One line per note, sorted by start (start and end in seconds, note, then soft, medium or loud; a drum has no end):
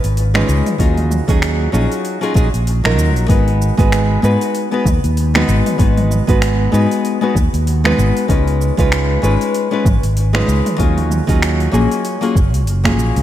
0.04 0.42 G#1 medium
0.04 open hi-hat soft
0.04 cabasa soft
0.17 open hi-hat medium
0.17 cabasa soft
0.34 0.76 G#3 medium
0.34 0.76 C#4 medium
0.34 0.76 D#4 medium
0.34 0.77 F4 medium
0.34 0.77 B4 loud
0.34 finger snap medium
0.34 mid tom medium
0.48 0.61 C#2 medium
0.48 cabasa medium
0.66 mid tom medium
0.66 open hi-hat soft
0.66 cabasa soft
0.78 1.19 D#2 medium
0.78 1.24 F#3 medium
0.78 1.24 C#4 medium
0.78 1.24 D#4 medium
0.78 1.25 F4 medium
0.78 1.25 G#4 medium
0.78 kick loud
0.78 open hi-hat medium
0.78 cabasa soft
0.97 mid tom medium
0.97 open hi-hat soft
1.11 mid tom medium
1.11 cabasa medium
1.28 1.66 D#2 medium
1.28 1.69 F#3 medium
1.28 1.70 C#4 medium
1.28 1.70 D#4 medium
1.28 1.70 F4 medium
1.28 1.71 G#4 loud
1.28 kick loud
1.28 open hi-hat soft
1.28 cabasa soft
1.42 finger snap medium
1.42 open hi-hat medium
1.42 cabasa soft
1.72 1.86 A#1 medium
1.72 2.18 F#3 medium
1.72 2.18 C#4 medium
1.72 2.18 D#4 medium
1.72 2.18 F4 medium
1.72 2.19 G#4 loud
1.72 cabasa medium
1.92 open hi-hat soft
1.92 cabasa soft
2.05 open hi-hat soft
2.05 cabasa soft
2.21 2.32 F#3 medium
2.21 2.33 C#4 medium
2.21 2.33 D#4 medium
2.21 2.33 F4 medium
2.21 2.33 G#4 loud
2.21 open hi-hat soft
2.34 2.48 A#1 medium
2.34 2.47 F#3 loud
2.34 2.47 C#4 medium
2.34 2.48 D#4 medium
2.34 2.48 F4 medium
2.34 2.48 G#4 loud
2.34 kick loud
2.34 cabasa medium
2.54 2.85 A#1 medium
2.54 open hi-hat soft
2.54 cabasa soft
2.67 open hi-hat medium
2.67 cabasa soft
2.84 2.98 A#1 medium
2.84 3.26 F#3 loud
2.84 3.26 C#4 medium
2.84 3.26 D#4 medium
2.84 3.26 F4 medium
2.84 3.27 A#4 loud
2.84 finger snap medium
2.84 mid tom medium
2.98 3.17 D#2 medium
2.98 cabasa medium
3.16 3.25 A#1 medium
3.16 open hi-hat soft
3.16 cabasa soft
3.28 3.70 G#1 loud
3.28 3.74 G#3 medium
3.28 3.74 B3 medium
3.28 3.74 D#4 medium
3.28 3.75 F#4 medium
3.28 3.75 B4 medium
3.28 kick loud
3.28 open hi-hat medium
3.28 cabasa soft
3.48 open hi-hat soft
3.62 cabasa medium
3.77 4.16 G#1 medium
3.77 4.19 G#3 loud
3.77 4.20 B3 medium
3.77 4.20 D#4 medium
3.77 4.20 F#4 medium
3.77 4.20 B4 loud
3.77 kick loud
3.77 open hi-hat soft
3.77 cabasa soft
3.92 finger snap medium
3.92 open hi-hat medium
3.92 cabasa soft
4.22 4.35 G#2 medium
4.22 4.68 G#3 medium
4.22 4.68 B3 medium
4.22 4.68 D#4 medium
4.22 4.68 F#4 medium
4.22 4.69 B4 medium
4.22 cabasa medium
4.41 open hi-hat soft
4.41 cabasa soft
4.55 open hi-hat medium
4.55 cabasa soft
4.71 4.86 G#3 medium
4.71 4.87 B3 medium
4.71 4.87 D#4 medium
4.71 4.87 F#4 medium
4.71 4.88 B4 loud
4.86 4.98 D#2 medium
4.86 kick loud
4.86 mid tom medium
4.86 cabasa medium
5.04 5.42 D#2 medium
5.04 open hi-hat soft
5.04 cabasa soft
5.17 open hi-hat medium
5.17 cabasa soft
5.34 5.76 G#3 medium
5.34 5.76 B3 medium
5.34 5.76 D#4 medium
5.34 5.77 F#4 medium
5.34 5.77 B4 loud
5.34 finger snap medium
5.34 mid tom medium
5.48 5.60 G#1 loud
5.48 cabasa medium
5.66 mid tom medium
5.66 open hi-hat soft
5.66 cabasa soft
5.78 6.20 G#1 loud
5.78 6.24 G#3 medium
5.78 6.24 B3 medium
5.78 6.24 D#4 medium
5.78 6.24 F#4 medium
5.78 6.25 B4 medium
5.78 kick loud
5.78 open hi-hat medium
5.78 cabasa soft
5.97 mid tom medium
5.97 open hi-hat soft
6.11 mid tom medium
6.11 cabasa medium
6.27 6.66 G#1 medium
6.27 6.69 G#3 medium
6.27 6.70 B3 medium
6.27 6.70 D#4 medium
6.27 6.70 F#4 medium
6.27 6.70 B4 loud
6.27 kick loud
6.27 open hi-hat soft
6.27 cabasa soft
6.42 finger snap medium
6.42 open hi-hat medium
6.42 cabasa soft
6.72 6.85 G#2 medium
6.72 7.17 G#3 medium
6.72 7.18 B3 medium
6.72 7.18 D#4 medium
6.72 7.18 F#4 medium
6.72 7.18 B4 loud
6.72 cabasa medium
6.91 open hi-hat soft
6.91 cabasa soft
7.05 open hi-hat medium
7.05 cabasa soft
7.21 7.36 G#3 medium
7.21 7.37 B3 medium
7.21 7.37 D#4 medium
7.21 7.37 F#4 medium
7.21 7.38 B4 loud
7.36 7.48 D#2 medium
7.36 kick loud
7.36 cabasa medium
7.53 7.91 D#2 medium
7.53 open hi-hat soft
7.53 cabasa soft
7.67 open hi-hat medium
7.67 cabasa soft
7.84 8.26 G#3 medium
7.84 8.26 B3 medium
7.84 8.26 D#4 medium
7.84 8.27 F#4 medium
7.84 8.27 B4 loud
7.84 finger snap medium
7.84 mid tom medium
7.98 8.10 G#1 loud
7.98 cabasa medium
8.17 open hi-hat soft
8.17 cabasa soft
8.28 8.70 C#2 loud
8.28 8.74 G#3 medium
8.28 8.74 C#4 medium
8.28 8.74 D#4 medium
8.28 8.74 F4 medium
8.28 8.75 B4 medium
8.28 kick loud
8.28 open hi-hat medium
8.28 cabasa soft
8.47 open hi-hat soft
8.61 cabasa medium
8.77 9.16 C#2 medium
8.77 9.19 G#3 loud
8.77 9.20 C#4 medium
8.77 9.20 D#4 medium
8.77 9.20 F4 medium
8.77 9.20 B4 loud
8.77 kick loud
8.77 open hi-hat soft
8.77 cabasa soft
8.92 finger snap medium
8.92 open hi-hat medium
8.92 cabasa soft
9.22 9.35 G#1 medium
9.22 9.67 G#3 medium
9.22 9.68 C#4 medium
9.22 9.68 D#4 medium
9.22 9.68 F4 medium
9.22 9.69 B4 loud
9.22 cabasa medium
9.41 open hi-hat soft
9.41 cabasa soft
9.54 open hi-hat medium
9.54 cabasa soft
9.71 9.86 G#3 medium
9.71 9.87 C#4 medium
9.71 9.87 D#4 medium
9.71 9.87 F4 medium
9.71 9.87 B4 loud
9.85 9.98 G#1 medium
9.85 kick loud
9.85 mid tom medium
9.85 cabasa medium
10.03 10.41 G#1 medium
10.03 open hi-hat soft
10.03 cabasa soft
10.17 open hi-hat medium
10.17 cabasa soft
10.33 10.75 G#3 loud
10.33 10.76 C#4 medium
10.33 10.76 D#4 medium
10.33 10.76 F4 medium
10.33 10.76 B4 loud
10.33 finger snap medium
10.33 mid tom medium
10.48 10.60 C#2 loud
10.48 cabasa medium
10.66 mid tom medium
10.66 open hi-hat soft
10.66 cabasa soft
10.78 11.19 D#2 loud
10.78 11.24 F#3 medium
10.78 11.24 C#4 medium
10.78 11.24 D#4 medium
10.78 11.24 F4 medium
10.78 11.25 G#4 loud
10.78 kick loud
10.78 open hi-hat medium
10.78 cabasa soft
10.98 mid tom medium
10.98 open hi-hat soft
11.11 mid tom medium
11.11 cabasa medium
11.27 11.66 D#2 medium
11.27 11.69 F#3 loud
11.27 11.69 C#4 medium
11.27 11.70 D#4 medium
11.27 11.70 F4 medium
11.27 11.70 G#4 loud
11.27 kick loud
11.27 open hi-hat soft
11.27 cabasa soft
11.42 finger snap medium
11.42 open hi-hat medium
11.42 cabasa soft
11.60 open hi-hat soft
11.72 11.85 A#1 medium
11.72 12.17 F#3 loud
11.72 12.18 A#3 medium
11.72 12.18 C#4 medium
11.72 12.18 F4 medium
11.72 12.18 G#4 loud
11.72 cabasa medium
11.91 open hi-hat soft
11.91 cabasa soft
12.05 open hi-hat medium
12.05 cabasa soft
12.21 12.36 F#3 medium
12.21 12.37 A#3 medium
12.21 12.37 C#4 medium
12.21 12.37 F4 medium
12.21 12.37 G#4 loud
12.21 open hi-hat soft
12.36 12.54 F#1 medium
12.36 kick loud
12.36 cabasa medium
12.54 12.67 C#2 medium
12.54 open hi-hat soft
12.54 cabasa soft
12.67 12.98 F#1 loud
12.67 open hi-hat medium
12.67 cabasa soft
12.84 13.23 F#3 medium
12.84 13.23 A#3 medium
12.84 13.23 C#4 medium
12.84 13.23 F4 medium
12.84 13.23 G#4 loud
12.84 finger snap medium
12.84 kick medium
12.84 mid tom medium
12.84 open hi-hat soft
12.98 13.10 A#1 loud
12.98 cabasa medium
13.16 13.23 C#2 loud
13.16 open hi-hat soft
13.16 cabasa soft